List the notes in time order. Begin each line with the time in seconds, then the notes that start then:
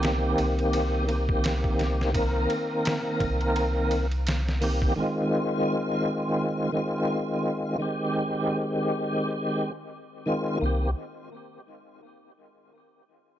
Already playing: C2 D#3 A#3 C4 G4
0.03 snare, ride
0.38 C2, ride
0.59 ride
0.73 ride
1.07 D#3 A#3 C4, ride
1.11 G4
1.29 kick
1.44 snare, ride
1.64 kick
1.79 snare, ride
2.01 snare
2.12 D#3 A#3 C4, kick, ride
2.17 A#4
2.50 ride
2.85 snare, ride
3.20 C2, kick, ride
3.41 ride
3.56 ride
3.91 ride
4.11 ride
4.27 snare, ride
4.49 snare
4.61 D#3 A#3 C4 G4, open hi-hat
4.82 kick
4.96 D#3 G#3 C4
5.00 F4
6.72 D#3 G#3 C4
6.77 F4
7.78 D#3 G#3 C4
7.82 G4
10.26 D#3 G#3 C4 F4
10.59 C2 D#3 A#3
10.64 C4 G4